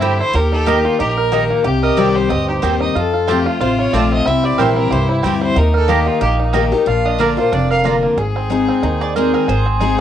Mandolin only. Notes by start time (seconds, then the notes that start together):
0.01 C4 E4 C5 G5
0.66 A#3 G4 D#5 A#5
1.32 A#3 G4 D#5 A#5
1.97 C4 G4 D#5 G5
2.63 C4 G4 D#5 G5
3.27 C4 F4 C5 A5
3.93 C4 F4 C5 A5
4.58 C4 E4 C5 G5
5.23 C4 E4 C5 G5
5.88 A#3 G4 D#5 A#5
6.53 A#3 G4 D#5 A#5
7.19 A#3 F4 D5 A#5
7.84 A#3 F4 D5 A#5
9.01 D5
9.16 C5
9.34 A#4
9.49 C5